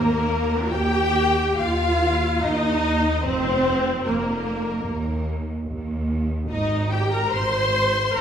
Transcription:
Already playing: D#2 A#3 A#4
0.70 D#2 G4 G5
1.57 D#2 F4 F5
2.41 D#2 D#4 D#5
3.23 F1 F2 C4 C5
4.04 F1 F2 A#3 A#4
4.87 D#2
5.69 D#2
6.50 G#1 G#2 D#4 D#5
6.91 G4 G5
7.11 A#4 A#5
7.33 G#1 G#2 C5 C6
8.15 G#1 G#2 A#4 A#5

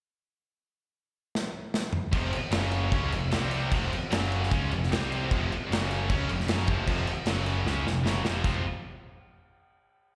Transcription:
1.35 snare
1.74 snare
1.93 mid tom
2.12 F1 F2 C3 F3 C4 G4, kick, crash
2.33 muted picked electric bass stroke, muted distorted electric guitar stroke, crash
2.51 F#1 F#2 C#3 F#3 C#4 G#4, snare, crash
2.55 F#3
2.71 crash
2.91 C#2 C#3 F3 G#3 C4 C#4 G4, kick, crash
3.12 F1 F2 C3, crash
3.31 C2 C3 G3 C4 G4 C5, snare, crash
3.51 crash
3.71 F1 F2 C3 F3 C4 G4, kick, crash
3.92 muted picked electric bass stroke, muted distorted electric guitar stroke, crash
4.12 F#1 F#2 C#3 F#3 C#4 G#4, snare, crash
4.32 crash
4.43 snare
4.51 C#2 C#3 F3 G#3 C4 C#4, kick, crash
4.55 G4
4.71 F1 F2 C3, crash
4.83 snare
4.90 C2 C3 G3 C4 C5, snare, crash
5.12 crash
5.30 F1 F2 C3 F3 C4, kick, crash
5.35 F3
5.51 muted distorted electric guitar stroke, muted picked electric bass stroke, crash
5.67 F#2
5.71 F#1 F#2 C#3 F#3 C#4 G#4, snare, crash
5.91 crash
6.09 C#2 C#3 F3 G#3 C4 C#4 G4, kick, crash
6.29 F1 F2 C3, crash
6.40 snare
6.48 F#1 F#2 C#3 F#3, snare, crash
6.67 F1 F2 C3 F3, kick, crash
6.87 F1 F2 C3 F3, kick, crash
7.07 muted picked electric bass stroke, muted distorted electric guitar stroke, crash
7.26 F#1 F#2 C#3, snare, crash
7.30 F#3 C#4 G#4
7.46 crash
7.64 C#2 C#3 F3 G#3 C4 G4, snare
7.69 C#4
7.84 F1 F2, snare
7.89 C3
8.05 F#1 F#2 C#3 F#3, snare
8.23 F1 F2 C3 F3, snare
8.42 F1 F2 C3 F3 G#3 C4 F4 G4, kick, crash

